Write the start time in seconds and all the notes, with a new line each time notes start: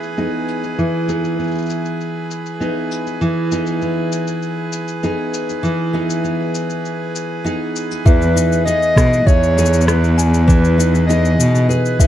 Already playing: E3 B3 D#4 G#4 B4
0.03 cabasa
0.17 B3 D#4 G#4, cabasa
0.48 cabasa
0.64 cabasa
0.78 E3, cabasa
1.08 B3 D#4 G#4, cabasa
1.24 cabasa
1.39 B3, cabasa
1.43 cabasa
1.48 cabasa
1.51 cabasa
1.55 cabasa
1.58 cabasa
1.62 cabasa
1.66 cabasa
1.70 cabasa
1.85 cabasa
2.01 cabasa
2.31 cabasa
2.46 cabasa
2.60 B3 D#4 G#4, cabasa
2.92 cabasa
3.07 cabasa
3.21 E3, cabasa
3.51 B3 D#4 G#4, cabasa
3.67 cabasa
3.82 B3, cabasa
4.12 cabasa
4.27 cabasa
4.42 cabasa
4.72 cabasa
4.88 cabasa
5.03 B3 D#4 G#4, cabasa
5.34 cabasa
5.49 cabasa
5.63 E3, cabasa
5.93 B3 D#4 G#4
6.10 cabasa
6.24 B3, cabasa
6.55 cabasa
6.70 cabasa
6.85 cabasa
7.16 cabasa
7.44 B3 D#4 G#4, cabasa
7.76 cabasa
7.91 cabasa
8.05 E2 E3 B4 E5, kick, cabasa
8.22 cabasa
8.36 D#4, cabasa
8.52 cabasa
8.65 B3 D#4 G#4 D#5, cabasa
8.83 cabasa
8.97 B2, kick, cross-stick, cabasa
9.13 cabasa
9.26 E2 G#4 C#5 E5, kick, cabasa
9.43 cabasa
9.57 B3 D#4 G#4, cabasa
9.66 cabasa
9.73 cabasa
9.81 cabasa
9.86 B3 B4, cross-stick, cabasa
10.04 cabasa
10.18 G#5, cabasa
10.34 cabasa
10.47 E3 B4, kick, cabasa
10.65 cabasa
10.78 D#4, cabasa
10.95 cabasa
11.07 B3 D#4 G#4 D#5, cabasa
11.25 cabasa
11.39 B2, cabasa
11.55 cabasa
11.69 G#4 B4, cabasa
11.86 cabasa
12.00 B3 D#4 G#4 E5, kick, cabasa